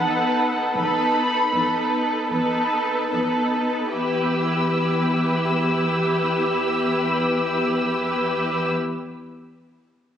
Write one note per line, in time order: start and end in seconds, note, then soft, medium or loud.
0.00 0.74 B3 soft
0.00 0.75 D#4 soft
0.00 0.74 A4 soft
0.00 0.74 B4 soft
0.00 0.75 F#5 medium
0.75 0.83 E2 medium
0.75 1.52 B3 soft
0.75 1.52 D#4 soft
0.75 1.52 A4 soft
0.75 1.51 B4 soft
0.75 2.31 B5 medium
1.53 1.61 E2 soft
1.53 2.30 B3 soft
1.53 2.30 D#4 soft
1.53 2.30 A4 soft
1.53 2.29 B4 soft
2.30 2.38 E2 soft
2.30 3.12 B3 soft
2.30 3.11 D#4 soft
2.30 3.10 A4 soft
2.30 3.10 B4 soft
3.11 3.20 E2 soft
3.11 3.93 B3 soft
3.11 3.93 D#4 soft
3.11 3.92 A4 soft
3.11 3.92 B4 soft
3.93 8.70 E2 soft
3.93 8.71 B3 soft
3.93 8.71 E4 soft
3.93 8.69 G4 soft
3.93 8.69 B4 soft
3.93 8.70 E6 soft